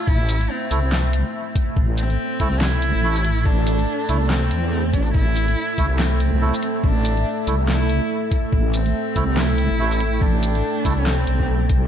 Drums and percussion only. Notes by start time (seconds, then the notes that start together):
0.07 kick
0.29 closed hi-hat, shaker
0.41 closed hi-hat
0.71 closed hi-hat, shaker
0.92 snare, clap
1.13 closed hi-hat
1.55 kick, closed hi-hat
1.77 kick
1.98 closed hi-hat, shaker
2.10 closed hi-hat
2.40 kick, closed hi-hat
2.61 snare, clap
2.82 closed hi-hat
3.16 shaker
3.25 closed hi-hat
3.46 kick
3.67 closed hi-hat, shaker
3.79 closed hi-hat
4.09 closed hi-hat, shaker
4.30 snare, clap
4.51 closed hi-hat
4.93 kick, closed hi-hat
5.14 kick
5.36 closed hi-hat, shaker
5.48 closed hi-hat
5.78 kick, closed hi-hat
5.99 snare, clap
6.20 closed hi-hat
6.54 shaker
6.63 closed hi-hat
6.84 kick
7.05 closed hi-hat, shaker
7.17 closed hi-hat
7.47 closed hi-hat, shaker
7.68 snare, clap
7.89 closed hi-hat
8.31 kick, closed hi-hat
8.53 kick
8.74 closed hi-hat, shaker
8.86 closed hi-hat
9.16 kick, closed hi-hat
9.37 snare, clap
9.58 closed hi-hat
9.92 shaker
10.00 closed hi-hat
10.21 kick
10.43 closed hi-hat, shaker
10.55 closed hi-hat
10.85 kick, closed hi-hat, shaker
11.06 snare, clap
11.27 closed hi-hat
11.40 kick
11.69 kick, closed hi-hat